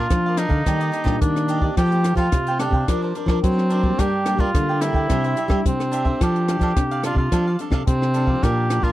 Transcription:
Already playing: F4
0.10 F3 A#3 D4, kick, cross-stick, closed hi-hat
0.26 A#4 D5 F5
0.37 D4 D#4 A#4 D5 F5, cross-stick, closed hi-hat
0.49 D3 A#4 D5 F5, kick
0.66 D#3 G3 A#3 D4 G4 D5 D#5, kick, cross-stick, closed hi-hat
0.80 G4 D5 D#5, closed hi-hat
0.92 D4 G4 D5 D#5, closed hi-hat
1.04 A#2 G3 A#3 D4 G4 D5 D#5, kick, cross-stick
1.21 A#2 D#3 D4, kick, closed hi-hat
1.36 cross-stick, closed hi-hat
1.48 D4 G4 D5 D#5, closed hi-hat
1.61 A3 C4 G4 D5 D#5, kick
1.77 F3 G4 A4 C5 F5 G5, kick, cross-stick, closed hi-hat
1.91 A3 C4 G4, closed hi-hat
2.03 A3 C4 A4 C5 F5 G5, cross-stick, closed hi-hat
2.15 F3 F4 A4 C5 F5 G5, kick, closed hi-hat
2.32 C3 A3 C4 G4, kick, cross-stick, closed hi-hat
2.47 C5 F5 G5, closed hi-hat
2.59 A3 C4 D4 G4 A4 C5 F5 G5, cross-stick, closed hi-hat
2.71 C3 F5 G5, kick
2.75 C5
2.88 F3 C4 D4 A#4 C5 D5, kick, cross-stick, closed hi-hat
3.02 A#4 C5 D5
3.15 C4 D4 A#4 C5 D5, closed hi-hat
3.26 F3 C4 D4 A#4 C5 D5, kick, cross-stick
3.43 F#3 C4, kick, closed hi-hat
3.58 cross-stick
3.70 C4 D4 A#4 C5 D5, closed hi-hat
3.83 G3 A#3 D4 A#4 C5 D5, kick
3.99 G2 G3 D4 G4 A#4 D5 G5, kick, cross-stick, closed hi-hat
4.26 G3 A#3 D4 A#4 D5 G5, cross-stick, closed hi-hat
4.37 G3 D4 F4 A#4 D5 G5, kick
4.54 D3 G3 A#3 D4, kick, cross-stick, closed hi-hat
4.69 A#4 D5 G5
4.81 G3 A#3 D4 E4 A#4 D5 G5, cross-stick, closed hi-hat
4.93 D3 A#4 D5 G5, kick
5.10 C3 G3 D4 E4 G4 C5 E5, kick, cross-stick, closed hi-hat
5.24 G4 C5 E5, closed hi-hat
5.36 D4 G4 C5 E5, closed hi-hat
5.48 G3 D4 E4 G4 C5 E5, kick, cross-stick
5.65 C3 G3 C4, kick, closed hi-hat
5.80 cross-stick, closed hi-hat
5.92 D4 G4 C5 E5, closed hi-hat
6.05 C4 D4 G4 A4 C5 E5, kick
6.21 F3 D4 G4 A4 D5 F5, kick, cross-stick, closed hi-hat
6.36 closed hi-hat
6.48 C4 D4 A4 D5 F5, cross-stick, closed hi-hat
6.59 F3 D4 A4 D5 F5, kick, closed hi-hat
6.76 C3 C4 D4 A4, kick, cross-stick, closed hi-hat
6.91 A4 D5 F5, closed hi-hat
7.03 C4 D4 F4 A4 D5 F5, cross-stick, closed hi-hat
7.15 C3 F4 F5, kick
7.19 A4 D5
7.32 F3 C4 D4 A4 D5 F5, kick, cross-stick, closed hi-hat
7.47 A4 D5 F5
7.59 C4 D4 A4 D5 F5, closed hi-hat
7.71 C3 C4 D4 A4 D5 F5, kick, cross-stick
7.87 C3 C4, kick, closed hi-hat
8.02 cross-stick
8.14 C4 D4 A4 D5 F5, closed hi-hat
8.27 F3 A#3 D4 A4 D5 F5, kick
8.43 A#2 D4 G4 A#4 D5 F5, kick, cross-stick, closed hi-hat
8.70 F3 A#3 D4 A#4 D5 F5, cross-stick, closed hi-hat
8.82 A#2 D4 F4 A#4 D5 F5, kick

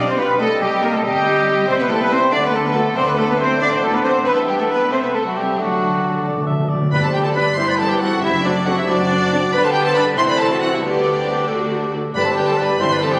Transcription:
Already playing: B1 G3 D4 F5 G5
0.05 C4 C5
0.17 G3 B3 F4 B4
0.37 C2 G3 A3 C4 A4 D#5 G5
0.59 G3 D#4 G4
0.81 G3 A#3 D#4 A#4
0.92 A3 A4
1.02 G1 G3 C4 G4 D#5 G5
1.24 G3 D#4
1.46 G3 D#4
1.66 C2 G3 C4 C5 E5 G5
1.78 B3 B4
1.88 G3 A3 E4 A4
1.99 B3 B4
2.09 G3 C4 E4 C5
2.31 D2 A3 D4 D5 F#5
2.42 B3 B4
2.51 F#3 A3 D4 A4
2.63 B3 B4
2.72 F#3 A3 D4 A4
2.94 D2 D3 A3 C4 D4 C5 D5 F#5
3.05 B3 B4
3.17 F#3 A3 D4 A4
3.28 B3 B4
3.37 F#3 C4 D4 C5
3.60 A1 A3 D4 D5 F#5
3.71 C4 C5
3.80 F#3 A3 D4 A4
3.92 B3 B4
4.03 F#3 C4 D4 C5
4.25 E2 G3 B3 D4 B4 E5 G5
4.36 A3 A4
4.45 G3 G4
4.57 A3 A4
4.68 B3 B4
4.91 C2 A3 C4 C5 E5 A5
5.01 B3 B4
5.13 A3 A4
5.23 F#3 F#4
5.34 G3 G4
5.57 D2 D3 F#3 A3 D4 F#4 D5 A5
5.66 D3
5.74 D3
5.81 D3
5.89 D3
5.97 D3
6.05 D3
6.13 D3
6.21 D3
6.25 D3 D5
6.36 D3
6.43 D3 E5
6.50 D3
6.59 D3
6.66 D3 D5
6.74 D3
6.81 D3
6.91 G1 G2 G3 B3 D4 G4 B4 D5 B5
7.02 A4 C5 A5
7.14 G3 B3 D4 G4 B4 G5
7.24 A4 C5 A5
7.34 G3 B3 D4 G4 B4 B5
7.39 D5
7.57 G1 G2 E3 G3 C4 E4 G4 C5 E5 C6
7.68 B4 D5 B5
7.78 E3 G3 C4 G4 A4 C5 A5
7.88 G4 B4 G5
8.00 E3 G3 C4 E4 F#4 G4 A4 F#5
8.21 F#1 F#2 F#3 A3 C4 D4 E4 G4 E5
8.43 F#3 A3 C4 D4 F#4 D5
8.65 F#3 A3 C4 D4 F#4 A4 F#5
8.76 E4 G4 E5
8.87 F#1 F#2 F#3 A3 C4 D4 F#4 D5
9.08 F#3 A3 C4 D4
9.30 F#3 A3 C4 D4
9.52 G1 G2 D3 G3 B3 D4 G4 B4 D5 B5
9.63 A4 C5 A5
9.73 G4 B4 G5
9.84 A4 C5 A5
9.94 B3 D4 B4 D5 B5
10.16 C2 E3 A3 C4 E4 C5 E5 C6
10.27 B4 D5 B5
10.39 A4 C5 A5
10.49 F#4
10.60 C4 E4 F#4 A4 F#5
10.72 E4 G4 E5
10.82 D2 D3 G3 B3 D4 G4 D5
11.17 C4
11.27 B3 G4
11.47 D2 D3 A3 D4 F#4 A4
11.61 G4
11.70 F#4
11.82 G4
11.91 D4 F#4 A4
12.13 G1 G2 D3 G3 D4 G4 B4 D5 B5
12.24 A4 C5 A5
12.36 D3 G3 D4 G4 B4 G5
12.47 A4 C5 A5
12.58 D3 G3 D4 G4 B4 D5 B5
12.79 G1 G2 E3 G3 C4 E4 G4 C5 E5 C6
12.91 B4 D5 B5
13.00 E3 G3 C4 G4 A4 C5 A5
13.12 G4 B4 G5

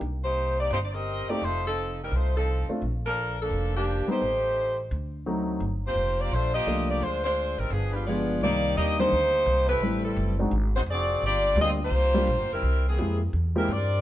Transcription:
0.01 C2
0.24 A#3 D#4 G4 C5
0.59 A#3 D#4 G4 D5
0.71 G1 A#3 D#4 G4 C5
0.85 D5
0.94 C4 G4 A#4 D#5
1.28 A3 A#3 C4 D#4 G4 D5, muted upright bass stroke
1.42 F1 A3 D#4 F4 C5
1.66 F3 C4 D#4 A4
2.03 G3 C4 D#4 A#4
2.12 C2 D#4
2.16 A3 F4 C5
2.37 F3 C4 D#4 A4
2.69 A3 C4 D4 F4, muted upright bass stroke
2.82 A#1
3.06 F3 D4 A4 A#4
3.42 F3 A#3 D4 A4
3.51 F1
3.76 F3 A#3 D4 G4
4.07 G3 A3 B3 C4 D#4, muted upright bass stroke
4.12 G4 C5
4.22 A1
4.91 D2
5.26 F#3 A3 C4 D#4
5.60 G1
5.86 A#3 F4 G4 C5
5.95 F1
6.20 A#3 F4 G4 D5
6.31 A#1 A3 D4 F4 C5
6.54 A#3 F4 G4 D#5
6.67 C2 F3 A3 A#3 D4
6.89 A#3 F4 G4 D5
7.01 D2 G#3 D4 F4 C5
7.24 G#3 D4 F4 C5
7.58 G#1 G3 C4 D#4 A#4
7.70 G1 F3 B3 D4 G#4
7.93 F3 G#3 B3 D4 F4 G4 B4
8.06 F3 G#3 B3 D4 F4 G#4 D5
8.41 C2 D#3 G3 A#3 C4 D#4 G4 D5
8.77 D#2 A#3 D4 G4 D#5
8.99 D#3 G3 A#3 C4 D4 D#4 G4 C5
9.12 D2
9.46 C2
9.68 A3 E4 G4 B4
9.80 A1 G3 A3 C4 E4 B4
10.04 G3 C4 E4 A4
10.17 F#1
10.39 G#3 C4 D4 D#4 F#4
10.51 G#1
10.75 G#3 D#4 F#4 C5
10.86 F1
10.90 C4 F#4 G#4 D5
11.22 G1
11.26 A#3 F4 G4 D5
11.56 D2 G3 A#3 D4 F4 G4
11.61 C4 F4 G#4 D#5
11.84 A#3 F4 G4 C5
11.91 C2
12.14 G3 A#3 D4 F4 G4
12.27 A#1
12.39 G1
12.51 F1 G3 C4 E4 A#4
12.62 C2
12.88 E3 A#3 C4 G#4
12.98 F2 G#3 A#3 C4 E4 G4
13.33 E2
13.55 G3 G#3 A#3 C4 E4 G4 A#4
13.68 G2 C4 G4 A#4 D5

